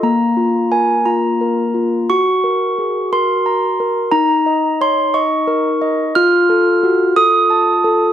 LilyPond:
\new Staff \with { instrumentName = "Handbells" } { \time 6/8 \key ges \lydian \tempo 4. = 59 << { bes''4 aes''8 bes''4. | des'''4. c'''4. | bes''4 c'''8 des'''4. | f'''4. ees'''4. | } \\ { bes8 f'8 bes'8 f'8 bes'8 f'8 | ges'8 bes'8 aes'8 bes'8 bes''8 bes'8 | ees'8 ees''8 des''8 ees''8 bes'8 ees''8 | f'8 a'8 ges'8 a'8 a''8 a'8 | } >> }